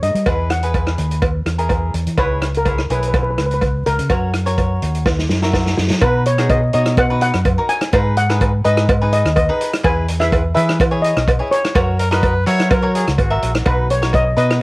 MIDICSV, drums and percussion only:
0, 0, Header, 1, 2, 480
1, 0, Start_track
1, 0, Key_signature, 5, "major"
1, 0, Tempo, 478088
1, 267, Time_signature, 4, 2, 24, 8
1, 14678, End_track
2, 0, Start_track
2, 0, Title_t, "Drums"
2, 26, Note_on_c, 9, 42, 77
2, 126, Note_off_c, 9, 42, 0
2, 153, Note_on_c, 9, 42, 60
2, 253, Note_off_c, 9, 42, 0
2, 261, Note_on_c, 9, 56, 89
2, 263, Note_on_c, 9, 42, 53
2, 265, Note_on_c, 9, 36, 84
2, 362, Note_off_c, 9, 56, 0
2, 363, Note_off_c, 9, 42, 0
2, 366, Note_off_c, 9, 36, 0
2, 503, Note_on_c, 9, 37, 85
2, 503, Note_on_c, 9, 42, 85
2, 604, Note_off_c, 9, 37, 0
2, 604, Note_off_c, 9, 42, 0
2, 629, Note_on_c, 9, 42, 58
2, 729, Note_off_c, 9, 42, 0
2, 743, Note_on_c, 9, 42, 48
2, 745, Note_on_c, 9, 36, 67
2, 746, Note_on_c, 9, 56, 67
2, 843, Note_off_c, 9, 42, 0
2, 845, Note_off_c, 9, 36, 0
2, 847, Note_off_c, 9, 56, 0
2, 870, Note_on_c, 9, 37, 71
2, 971, Note_off_c, 9, 37, 0
2, 983, Note_on_c, 9, 42, 74
2, 1083, Note_off_c, 9, 42, 0
2, 1114, Note_on_c, 9, 42, 52
2, 1214, Note_off_c, 9, 42, 0
2, 1224, Note_on_c, 9, 56, 87
2, 1227, Note_on_c, 9, 36, 98
2, 1229, Note_on_c, 9, 42, 58
2, 1324, Note_off_c, 9, 56, 0
2, 1327, Note_off_c, 9, 36, 0
2, 1329, Note_off_c, 9, 42, 0
2, 1466, Note_on_c, 9, 37, 74
2, 1466, Note_on_c, 9, 42, 75
2, 1567, Note_off_c, 9, 37, 0
2, 1567, Note_off_c, 9, 42, 0
2, 1592, Note_on_c, 9, 42, 50
2, 1693, Note_off_c, 9, 42, 0
2, 1700, Note_on_c, 9, 56, 70
2, 1706, Note_on_c, 9, 36, 73
2, 1706, Note_on_c, 9, 42, 49
2, 1800, Note_off_c, 9, 56, 0
2, 1806, Note_off_c, 9, 36, 0
2, 1806, Note_off_c, 9, 42, 0
2, 1947, Note_on_c, 9, 42, 72
2, 2048, Note_off_c, 9, 42, 0
2, 2075, Note_on_c, 9, 42, 59
2, 2176, Note_off_c, 9, 42, 0
2, 2185, Note_on_c, 9, 42, 51
2, 2185, Note_on_c, 9, 56, 91
2, 2186, Note_on_c, 9, 36, 85
2, 2285, Note_off_c, 9, 56, 0
2, 2286, Note_off_c, 9, 42, 0
2, 2287, Note_off_c, 9, 36, 0
2, 2427, Note_on_c, 9, 37, 82
2, 2427, Note_on_c, 9, 42, 79
2, 2528, Note_off_c, 9, 37, 0
2, 2528, Note_off_c, 9, 42, 0
2, 2552, Note_on_c, 9, 42, 48
2, 2653, Note_off_c, 9, 42, 0
2, 2664, Note_on_c, 9, 56, 59
2, 2666, Note_on_c, 9, 42, 53
2, 2667, Note_on_c, 9, 36, 71
2, 2764, Note_off_c, 9, 56, 0
2, 2767, Note_off_c, 9, 36, 0
2, 2767, Note_off_c, 9, 42, 0
2, 2793, Note_on_c, 9, 37, 69
2, 2894, Note_off_c, 9, 37, 0
2, 2912, Note_on_c, 9, 42, 70
2, 3012, Note_off_c, 9, 42, 0
2, 3037, Note_on_c, 9, 42, 54
2, 3137, Note_off_c, 9, 42, 0
2, 3150, Note_on_c, 9, 42, 53
2, 3150, Note_on_c, 9, 56, 76
2, 3151, Note_on_c, 9, 36, 93
2, 3250, Note_off_c, 9, 42, 0
2, 3251, Note_off_c, 9, 36, 0
2, 3251, Note_off_c, 9, 56, 0
2, 3394, Note_on_c, 9, 37, 68
2, 3394, Note_on_c, 9, 42, 68
2, 3495, Note_off_c, 9, 37, 0
2, 3495, Note_off_c, 9, 42, 0
2, 3524, Note_on_c, 9, 42, 48
2, 3624, Note_off_c, 9, 42, 0
2, 3628, Note_on_c, 9, 56, 64
2, 3635, Note_on_c, 9, 36, 72
2, 3638, Note_on_c, 9, 42, 58
2, 3729, Note_off_c, 9, 56, 0
2, 3735, Note_off_c, 9, 36, 0
2, 3738, Note_off_c, 9, 42, 0
2, 3877, Note_on_c, 9, 42, 71
2, 3978, Note_off_c, 9, 42, 0
2, 4005, Note_on_c, 9, 42, 67
2, 4106, Note_off_c, 9, 42, 0
2, 4113, Note_on_c, 9, 56, 85
2, 4116, Note_on_c, 9, 36, 83
2, 4118, Note_on_c, 9, 42, 52
2, 4214, Note_off_c, 9, 56, 0
2, 4217, Note_off_c, 9, 36, 0
2, 4219, Note_off_c, 9, 42, 0
2, 4355, Note_on_c, 9, 37, 79
2, 4355, Note_on_c, 9, 42, 82
2, 4455, Note_off_c, 9, 37, 0
2, 4455, Note_off_c, 9, 42, 0
2, 4484, Note_on_c, 9, 42, 60
2, 4585, Note_off_c, 9, 42, 0
2, 4596, Note_on_c, 9, 56, 56
2, 4598, Note_on_c, 9, 36, 69
2, 4598, Note_on_c, 9, 42, 56
2, 4697, Note_off_c, 9, 56, 0
2, 4698, Note_off_c, 9, 36, 0
2, 4699, Note_off_c, 9, 42, 0
2, 4840, Note_on_c, 9, 42, 72
2, 4941, Note_off_c, 9, 42, 0
2, 4967, Note_on_c, 9, 42, 52
2, 5067, Note_off_c, 9, 42, 0
2, 5077, Note_on_c, 9, 38, 47
2, 5077, Note_on_c, 9, 56, 80
2, 5079, Note_on_c, 9, 36, 96
2, 5178, Note_off_c, 9, 38, 0
2, 5178, Note_off_c, 9, 56, 0
2, 5179, Note_off_c, 9, 36, 0
2, 5207, Note_on_c, 9, 38, 46
2, 5307, Note_off_c, 9, 38, 0
2, 5315, Note_on_c, 9, 38, 59
2, 5416, Note_off_c, 9, 38, 0
2, 5444, Note_on_c, 9, 38, 54
2, 5544, Note_off_c, 9, 38, 0
2, 5556, Note_on_c, 9, 38, 72
2, 5558, Note_on_c, 9, 36, 67
2, 5562, Note_on_c, 9, 56, 64
2, 5657, Note_off_c, 9, 38, 0
2, 5658, Note_off_c, 9, 36, 0
2, 5662, Note_off_c, 9, 56, 0
2, 5685, Note_on_c, 9, 38, 57
2, 5785, Note_off_c, 9, 38, 0
2, 5797, Note_on_c, 9, 38, 82
2, 5898, Note_off_c, 9, 38, 0
2, 5925, Note_on_c, 9, 38, 85
2, 6026, Note_off_c, 9, 38, 0
2, 6039, Note_on_c, 9, 56, 96
2, 6041, Note_on_c, 9, 36, 100
2, 6042, Note_on_c, 9, 42, 50
2, 6139, Note_off_c, 9, 56, 0
2, 6142, Note_off_c, 9, 36, 0
2, 6142, Note_off_c, 9, 42, 0
2, 6281, Note_on_c, 9, 42, 88
2, 6381, Note_off_c, 9, 42, 0
2, 6407, Note_on_c, 9, 37, 77
2, 6407, Note_on_c, 9, 42, 61
2, 6508, Note_off_c, 9, 37, 0
2, 6508, Note_off_c, 9, 42, 0
2, 6519, Note_on_c, 9, 42, 59
2, 6521, Note_on_c, 9, 36, 81
2, 6524, Note_on_c, 9, 56, 70
2, 6620, Note_off_c, 9, 42, 0
2, 6621, Note_off_c, 9, 36, 0
2, 6624, Note_off_c, 9, 56, 0
2, 6756, Note_on_c, 9, 42, 71
2, 6857, Note_off_c, 9, 42, 0
2, 6885, Note_on_c, 9, 37, 81
2, 6885, Note_on_c, 9, 42, 63
2, 6985, Note_off_c, 9, 37, 0
2, 6985, Note_off_c, 9, 42, 0
2, 6998, Note_on_c, 9, 42, 56
2, 7001, Note_on_c, 9, 36, 104
2, 7007, Note_on_c, 9, 56, 97
2, 7098, Note_off_c, 9, 42, 0
2, 7102, Note_off_c, 9, 36, 0
2, 7107, Note_off_c, 9, 56, 0
2, 7240, Note_on_c, 9, 42, 85
2, 7340, Note_off_c, 9, 42, 0
2, 7367, Note_on_c, 9, 37, 72
2, 7367, Note_on_c, 9, 42, 59
2, 7467, Note_off_c, 9, 37, 0
2, 7467, Note_off_c, 9, 42, 0
2, 7479, Note_on_c, 9, 42, 59
2, 7482, Note_on_c, 9, 36, 83
2, 7484, Note_on_c, 9, 56, 74
2, 7580, Note_off_c, 9, 42, 0
2, 7582, Note_off_c, 9, 36, 0
2, 7584, Note_off_c, 9, 56, 0
2, 7718, Note_on_c, 9, 42, 87
2, 7819, Note_off_c, 9, 42, 0
2, 7843, Note_on_c, 9, 37, 96
2, 7843, Note_on_c, 9, 42, 65
2, 7944, Note_off_c, 9, 37, 0
2, 7944, Note_off_c, 9, 42, 0
2, 7956, Note_on_c, 9, 42, 66
2, 7963, Note_on_c, 9, 36, 92
2, 7965, Note_on_c, 9, 56, 94
2, 8057, Note_off_c, 9, 42, 0
2, 8063, Note_off_c, 9, 36, 0
2, 8066, Note_off_c, 9, 56, 0
2, 8200, Note_on_c, 9, 42, 92
2, 8300, Note_off_c, 9, 42, 0
2, 8332, Note_on_c, 9, 37, 76
2, 8332, Note_on_c, 9, 42, 61
2, 8432, Note_off_c, 9, 37, 0
2, 8432, Note_off_c, 9, 42, 0
2, 8442, Note_on_c, 9, 42, 63
2, 8444, Note_on_c, 9, 36, 75
2, 8446, Note_on_c, 9, 56, 73
2, 8542, Note_off_c, 9, 42, 0
2, 8544, Note_off_c, 9, 36, 0
2, 8546, Note_off_c, 9, 56, 0
2, 8682, Note_on_c, 9, 42, 78
2, 8783, Note_off_c, 9, 42, 0
2, 8808, Note_on_c, 9, 37, 90
2, 8808, Note_on_c, 9, 42, 58
2, 8909, Note_off_c, 9, 37, 0
2, 8909, Note_off_c, 9, 42, 0
2, 8924, Note_on_c, 9, 42, 55
2, 8925, Note_on_c, 9, 36, 112
2, 8926, Note_on_c, 9, 56, 91
2, 9025, Note_off_c, 9, 42, 0
2, 9026, Note_off_c, 9, 36, 0
2, 9027, Note_off_c, 9, 56, 0
2, 9162, Note_on_c, 9, 42, 89
2, 9263, Note_off_c, 9, 42, 0
2, 9293, Note_on_c, 9, 37, 74
2, 9293, Note_on_c, 9, 42, 58
2, 9394, Note_off_c, 9, 37, 0
2, 9394, Note_off_c, 9, 42, 0
2, 9399, Note_on_c, 9, 56, 81
2, 9406, Note_on_c, 9, 36, 81
2, 9406, Note_on_c, 9, 42, 60
2, 9500, Note_off_c, 9, 56, 0
2, 9506, Note_off_c, 9, 36, 0
2, 9507, Note_off_c, 9, 42, 0
2, 9646, Note_on_c, 9, 42, 81
2, 9747, Note_off_c, 9, 42, 0
2, 9774, Note_on_c, 9, 37, 98
2, 9774, Note_on_c, 9, 42, 63
2, 9874, Note_off_c, 9, 37, 0
2, 9874, Note_off_c, 9, 42, 0
2, 9883, Note_on_c, 9, 42, 52
2, 9883, Note_on_c, 9, 56, 93
2, 9884, Note_on_c, 9, 36, 107
2, 9983, Note_off_c, 9, 42, 0
2, 9983, Note_off_c, 9, 56, 0
2, 9984, Note_off_c, 9, 36, 0
2, 10123, Note_on_c, 9, 42, 89
2, 10223, Note_off_c, 9, 42, 0
2, 10253, Note_on_c, 9, 37, 76
2, 10253, Note_on_c, 9, 42, 56
2, 10354, Note_off_c, 9, 37, 0
2, 10354, Note_off_c, 9, 42, 0
2, 10365, Note_on_c, 9, 36, 82
2, 10368, Note_on_c, 9, 56, 75
2, 10370, Note_on_c, 9, 42, 51
2, 10465, Note_off_c, 9, 36, 0
2, 10468, Note_off_c, 9, 56, 0
2, 10470, Note_off_c, 9, 42, 0
2, 10609, Note_on_c, 9, 42, 76
2, 10709, Note_off_c, 9, 42, 0
2, 10734, Note_on_c, 9, 37, 83
2, 10734, Note_on_c, 9, 42, 60
2, 10834, Note_off_c, 9, 37, 0
2, 10834, Note_off_c, 9, 42, 0
2, 10843, Note_on_c, 9, 36, 98
2, 10845, Note_on_c, 9, 42, 55
2, 10851, Note_on_c, 9, 56, 99
2, 10943, Note_off_c, 9, 36, 0
2, 10945, Note_off_c, 9, 42, 0
2, 10951, Note_off_c, 9, 56, 0
2, 11087, Note_on_c, 9, 42, 79
2, 11188, Note_off_c, 9, 42, 0
2, 11213, Note_on_c, 9, 37, 78
2, 11213, Note_on_c, 9, 42, 51
2, 11314, Note_off_c, 9, 37, 0
2, 11314, Note_off_c, 9, 42, 0
2, 11323, Note_on_c, 9, 36, 83
2, 11326, Note_on_c, 9, 42, 56
2, 11330, Note_on_c, 9, 56, 87
2, 11423, Note_off_c, 9, 36, 0
2, 11426, Note_off_c, 9, 42, 0
2, 11430, Note_off_c, 9, 56, 0
2, 11570, Note_on_c, 9, 42, 84
2, 11670, Note_off_c, 9, 42, 0
2, 11694, Note_on_c, 9, 37, 90
2, 11694, Note_on_c, 9, 42, 72
2, 11794, Note_off_c, 9, 37, 0
2, 11794, Note_off_c, 9, 42, 0
2, 11801, Note_on_c, 9, 36, 106
2, 11802, Note_on_c, 9, 56, 108
2, 11805, Note_on_c, 9, 42, 54
2, 11902, Note_off_c, 9, 36, 0
2, 11902, Note_off_c, 9, 56, 0
2, 11905, Note_off_c, 9, 42, 0
2, 12040, Note_on_c, 9, 42, 88
2, 12140, Note_off_c, 9, 42, 0
2, 12171, Note_on_c, 9, 37, 91
2, 12171, Note_on_c, 9, 42, 67
2, 12272, Note_off_c, 9, 37, 0
2, 12272, Note_off_c, 9, 42, 0
2, 12278, Note_on_c, 9, 56, 64
2, 12279, Note_on_c, 9, 36, 84
2, 12281, Note_on_c, 9, 42, 64
2, 12378, Note_off_c, 9, 56, 0
2, 12380, Note_off_c, 9, 36, 0
2, 12381, Note_off_c, 9, 42, 0
2, 12519, Note_on_c, 9, 42, 86
2, 12620, Note_off_c, 9, 42, 0
2, 12648, Note_on_c, 9, 37, 89
2, 12648, Note_on_c, 9, 42, 59
2, 12748, Note_off_c, 9, 37, 0
2, 12748, Note_off_c, 9, 42, 0
2, 12758, Note_on_c, 9, 56, 92
2, 12760, Note_on_c, 9, 36, 111
2, 12760, Note_on_c, 9, 42, 60
2, 12858, Note_off_c, 9, 56, 0
2, 12860, Note_off_c, 9, 36, 0
2, 12861, Note_off_c, 9, 42, 0
2, 13002, Note_on_c, 9, 42, 85
2, 13102, Note_off_c, 9, 42, 0
2, 13128, Note_on_c, 9, 37, 70
2, 13128, Note_on_c, 9, 42, 57
2, 13228, Note_off_c, 9, 37, 0
2, 13228, Note_off_c, 9, 42, 0
2, 13235, Note_on_c, 9, 56, 60
2, 13238, Note_on_c, 9, 36, 81
2, 13239, Note_on_c, 9, 42, 64
2, 13335, Note_off_c, 9, 56, 0
2, 13339, Note_off_c, 9, 36, 0
2, 13340, Note_off_c, 9, 42, 0
2, 13478, Note_on_c, 9, 42, 81
2, 13578, Note_off_c, 9, 42, 0
2, 13603, Note_on_c, 9, 37, 96
2, 13603, Note_on_c, 9, 42, 71
2, 13703, Note_off_c, 9, 37, 0
2, 13703, Note_off_c, 9, 42, 0
2, 13712, Note_on_c, 9, 56, 88
2, 13713, Note_on_c, 9, 42, 55
2, 13716, Note_on_c, 9, 36, 111
2, 13812, Note_off_c, 9, 56, 0
2, 13813, Note_off_c, 9, 42, 0
2, 13816, Note_off_c, 9, 36, 0
2, 13956, Note_on_c, 9, 42, 79
2, 14057, Note_off_c, 9, 42, 0
2, 14084, Note_on_c, 9, 37, 87
2, 14084, Note_on_c, 9, 42, 58
2, 14184, Note_off_c, 9, 37, 0
2, 14184, Note_off_c, 9, 42, 0
2, 14187, Note_on_c, 9, 56, 62
2, 14196, Note_on_c, 9, 36, 82
2, 14199, Note_on_c, 9, 42, 55
2, 14287, Note_off_c, 9, 56, 0
2, 14297, Note_off_c, 9, 36, 0
2, 14300, Note_off_c, 9, 42, 0
2, 14434, Note_on_c, 9, 42, 74
2, 14534, Note_off_c, 9, 42, 0
2, 14564, Note_on_c, 9, 37, 89
2, 14564, Note_on_c, 9, 42, 57
2, 14665, Note_off_c, 9, 37, 0
2, 14665, Note_off_c, 9, 42, 0
2, 14678, End_track
0, 0, End_of_file